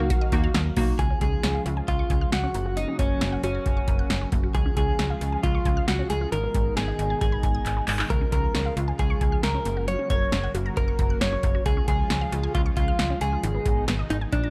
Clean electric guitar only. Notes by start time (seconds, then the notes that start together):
Already playing: F#4
0.99 G#4
1.21 G#4
1.88 F4
2.32 F#4
2.77 D#4
2.99 C#4
3.44 C#4
4.55 G#4
4.77 G#4
5.43 F4
5.88 F#4
6.10 G#4
6.32 A#4
6.77 G#4
7.21 G#4
8.10 A#4
8.32 A#4
8.99 G#4
9.44 A#4
9.88 C#5
10.10 C#5
10.77 A#4
11.21 C#5
11.66 G#4
11.88 G#4
12.55 F4
12.77 F4
13.21 G#4
14.10 D#4
14.33 D4